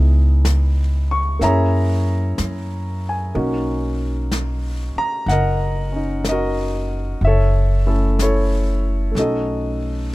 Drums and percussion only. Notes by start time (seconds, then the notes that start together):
0.45 brush sweep, snare, hi-hat pedal
1.42 brush sweep, snare
2.38 brush sweep, snare, hi-hat pedal
3.35 brush sweep
4.31 brush sweep, snare, hi-hat pedal
5.29 brush sweep, snare
6.25 brush sweep, snare, hi-hat pedal
7.22 brush sweep
8.19 brush sweep, snare, hi-hat pedal
9.16 brush sweep, snare